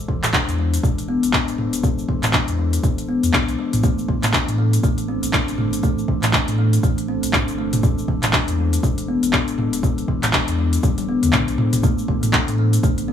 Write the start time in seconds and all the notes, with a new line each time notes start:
0.08 E1 E3, kick
0.23 clap, closed hi-hat, mid tom, shaker
0.33 D4, kick, clap, shaker
0.48 E2, closed hi-hat, shaker
0.59 G#3
0.74 closed hi-hat, shaker
0.83 E1 G#3, kick, shaker
0.98 closed hi-hat, shaker
1.08 B3
1.23 E1, closed hi-hat, shaker
1.33 D4, kick, clap, shaker
1.48 D1, closed hi-hat, shaker
1.58 G#3, mid tom
1.73 E1, closed hi-hat, shaker
1.83 G#3, kick, shaker
1.99 shaker
2.09 E1 E3, kick
2.23 clap, closed hi-hat, mid tom, shaker
2.33 D4, kick, clap, shaker
2.48 E2, closed hi-hat, shaker
2.58 G#3
2.73 closed hi-hat, shaker
2.84 D1 G#3, kick, shaker
2.98 closed hi-hat, shaker
3.09 B3
3.23 E2, closed hi-hat, shaker
3.33 D4, kick, clap, mid tom, shaker
3.48 B1, closed hi-hat, shaker
3.59 G#3
3.73 A1, closed hi-hat, mid tom, shaker
3.83 A3, kick, shaker
3.99 shaker
4.08 A1 E3, kick
4.23 clap, closed hi-hat, mid tom, shaker
4.33 D4, kick, clap, shaker
4.48 A2, closed hi-hat, shaker
4.58 A3
4.73 closed hi-hat, shaker
4.83 A1 A3, kick, shaker
4.98 closed hi-hat, shaker
5.08 C4
5.23 A1, closed hi-hat, shaker
5.33 D4, kick, clap, shaker
5.48 G1, closed hi-hat, shaker
5.58 A3, mid tom
5.73 A1, closed hi-hat, shaker
5.83 A3, kick, shaker
5.98 shaker
6.08 A1 E3, kick
6.23 clap, closed hi-hat, mid tom, shaker
6.33 D4, kick, clap, shaker
6.48 A2, closed hi-hat, shaker
6.58 A3
6.73 closed hi-hat, shaker
6.83 A1 A3, kick, shaker
6.98 closed hi-hat, shaker
7.08 C4
7.23 A1, closed hi-hat, shaker
7.33 D4, kick, clap, mid tom, shaker
7.48 G1, closed hi-hat, shaker
7.58 A3
7.73 E1, closed hi-hat, mid tom, shaker
7.83 G#3, kick, shaker
7.98 shaker
8.08 E1 E3, kick
8.23 clap, closed hi-hat, mid tom, shaker
8.33 D4, kick, clap, shaker
8.48 E2, closed hi-hat, shaker
8.58 G#3
8.73 closed hi-hat, shaker
8.83 E1 G#3, kick, shaker
8.98 closed hi-hat, shaker
9.08 B3
9.23 E1, closed hi-hat, shaker
9.33 D4, kick, clap, shaker
9.48 D1, closed hi-hat, shaker
9.58 G#3, mid tom
9.73 E1, closed hi-hat, shaker
9.83 G#3, kick, shaker
9.98 closed hi-hat, shaker
10.08 E1 E3, kick
10.23 clap, closed hi-hat, mid tom, shaker
10.33 D4, kick, clap, shaker
10.48 E2, closed hi-hat, shaker
10.58 G#3
10.73 closed hi-hat, shaker
10.83 D1 G#3, kick, high tom, shaker
10.98 closed hi-hat, high tom, shaker
11.09 B3
11.23 E2, closed hi-hat, mid tom, shaker
11.33 D4, kick, clap, mid tom, shaker
11.48 B1, closed hi-hat, shaker
11.58 G#3, mid tom
11.73 E1, closed hi-hat, mid tom, shaker
11.83 A3, kick, shaker
11.98 shaker
12.08 A1 E3, kick
12.23 closed hi-hat, mid tom, shaker
12.33 D4, kick, clap, shaker
12.48 A2, closed hi-hat, shaker
12.58 A3
12.73 closed hi-hat, shaker
12.83 G1 A3, kick, shaker
12.98 closed hi-hat, shaker
13.08 C4